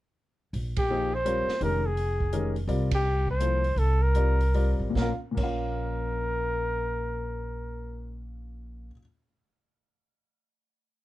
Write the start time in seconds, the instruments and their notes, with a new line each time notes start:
0.53 upright bass A#1, open hi-hat
0.76 muted trumpet G4, kick, ride
0.90 grand piano F3 A#3 D#4 G#4 C5
1.15 muted trumpet C5
1.25 grand piano G3 C4 F4 A#4 C#5, closed hi-hat
1.48 muted upright bass stroke, snare
1.61 upright bass F1, grand piano D#3 G#3 C#4 G4 A#4, muted trumpet A#4, open hi-hat
1.86 muted trumpet G#4
1.97 open hi-hat
2.20 kick
2.33 grand piano D#3 G#3 C#4 G4 A#4, closed hi-hat
2.56 open hi-hat
2.67 upright bass C2, grand piano G3 C4 F4 A#4 D5, open hi-hat
2.91 muted trumpet G4, kick, ride
3.27 muted trumpet C5, kick
3.40 grand piano F3 A#3 E4 A4 C5, closed hi-hat
3.64 open hi-hat
3.76 upright bass C2, muted trumpet A4, open hi-hat
4.02 muted trumpet A#4
4.15 grand piano G3 C4 F4 A#4 D5, closed hi-hat
4.41 open hi-hat
4.54 grand piano G3 C4 F4 A#4 D5, open hi-hat
4.79 upright bass A1
4.90 grand piano A#2 A#3
4.95 upright bass A#1, grand piano C#4 F4, muted trumpet A#4, kick, snare
5.02 grand piano F5
5.31 grand piano A#2 A#3
5.37 upright bass A#1, grand piano C#4 F4, muted trumpet A#4, kick, crash
5.43 grand piano F5